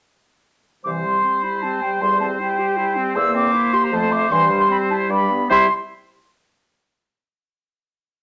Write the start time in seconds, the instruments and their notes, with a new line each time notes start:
0.84 bassoon C2, clarinet E3, french horn G3, oboe C5, flute D6
1.03 clarinet G3, flute C6
1.24 clarinet C4
1.43 clarinet E4, flute B5
1.62 clarinet C4, flute A5
1.81 clarinet G3, flute G5
2.01 bassoon E2, clarinet G3, flute C6
2.20 clarinet C4, flute A5
2.39 clarinet E4, flute G5
2.59 clarinet G4
2.77 clarinet E4
2.96 clarinet C4
3.15 bassoon E2, clarinet A#3, french horn A#3, oboe C5, flute E6
3.35 clarinet C4, flute D6
3.54 clarinet E4
3.73 clarinet G4, flute C6
3.84 flute A#5
3.92 bassoon F2, clarinet F3, french horn A3, flute A5
4.12 clarinet A3, flute D6
4.30 bassoon G2, clarinet E3, french horn G3, flute C6
4.51 clarinet G3
4.59 flute C6
4.70 clarinet C4, flute B5
4.90 clarinet E4, flute A5
5.09 bassoon G2, clarinet G3, oboe D5, flute B5
5.31 clarinet B3
5.50 bassoon C3, french horn G3, clarinet E4, oboe C5, flute C6